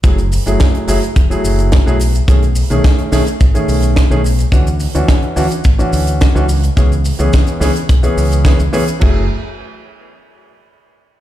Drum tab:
CC |----------------|----------------|----------------|----------------|
HH |xxoxxxoxxxoxx-ox|xxoxxxoxxxoxx-ox|xxoxxxoxxxoxx-ox|xxoxxxoxxxoxxxox|
SH |xxxxx-xxxxxxxxxx|xxxxx-xxxxxxxxxx|xxxxx-xxxxxxxxxx|xxxxxxxxxxxxxxxx|
SD |----o-------o---|----o-o-----o---|----o-------o---|----o-o-----o---|
BD |o---o---o---o---|o---o---o---o---|o---o---o---o---|o---o---o---o---|

CC |x---------------|
HH |----------------|
SH |----------------|
SD |----------------|
BD |o---------------|